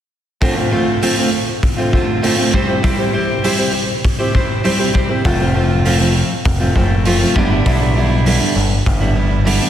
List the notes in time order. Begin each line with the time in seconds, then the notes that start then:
0.41 D2 A2 D3 A3 C4 F4, kick, open hi-hat
0.56 D3 A3 C4 F4
0.70 D3 A3 C4 F4
1.01 D2 A2 D3 A3 C4 F4, open hi-hat
1.17 D3 A3 C4 F4
1.31 muted steel-string acoustic guitar stroke
1.63 kick, open hi-hat
1.77 D3 A3 C4 F4
1.92 D3 A3 C4 F4, kick
2.22 D2 A2 D3 A3 C4 F4, open hi-hat
2.37 D3 A3 C4 F4
2.53 C3 G3 C4 E4 G4 C5, kick
2.68 C4 E4 G4 C5
2.82 C3 G3 C4 E4 G4 C5, kick, open hi-hat
2.98 C4 E4 G4 C5
3.13 C4 E4 G4 C5
3.43 C3 G3 C4 E4 G4 C5, open hi-hat
3.58 C4 E4 G4 C5
3.74 muted steel-string acoustic guitar stroke
4.04 kick, open hi-hat
4.19 C4 E4 G4 C5
4.33 C4 E4 G4 C5, kick
4.63 C3 G3 C4 E4 G4 C5, open hi-hat
4.79 C4 E4 G4 C5
4.93 C4 E4 G4 C5, kick
5.09 C4 E4 G4 C5
5.24 F1 F2 C3 F3 A3 C4 F4, kick, open hi-hat
5.39 F3 A3 C4 F4
5.54 F3 A3 C4 F4
5.85 F2 C3 F3 A3 C4 F4, open hi-hat
5.99 F3 A3 C4 F4
6.15 muted steel-string acoustic guitar stroke
6.45 F1, kick, open hi-hat
6.60 F3 A3 C4 F4
6.75 F#1 F3 A3 C4 F4, kick
7.05 F2 C3 F3 A3 C4 F4, open hi-hat
7.19 F3 A3 C4 F4
7.35 G1 G2 D3 G3 B3 D4 E4, kick
7.50 G3 B3 D4 E4
7.65 B1 G2 D3 G3 B3 D4 E4, kick, open hi-hat
7.81 G3 B3 D4 E4
7.96 G3 B3 D4 E4
8.25 G2 D3 G3 B3 D4 E4, open hi-hat
8.40 G3 B3 D4 E4
8.55 G1, muted steel-string acoustic guitar stroke
8.86 G1, kick, open hi-hat
9.00 G3 B3 D4 E4
9.15 G3 B3 D4 E4
9.45 G2 D3 G3 B3 D4 E4, open hi-hat
9.60 G3 B3 D4 E4